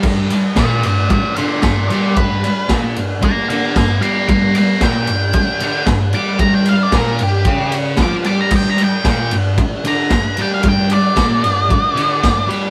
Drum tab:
CC |x-------|--------|--------|--------|
RD |-xxxxxxx|xxxxxxxx|xxxxxxxx|xxxxxxxx|
SD |--o---o-|--o---o-|--o---o-|--o---o-|
BD |o-o-o-o-|o-o-o-o-|o-o-o-o-|o-o-o-o-|

CC |x-------|--------|
RD |-xxxxxxx|xxxxxxxx|
SD |--o---o-|--o---o-|
BD |o-o-o-o-|o-o-o-o-|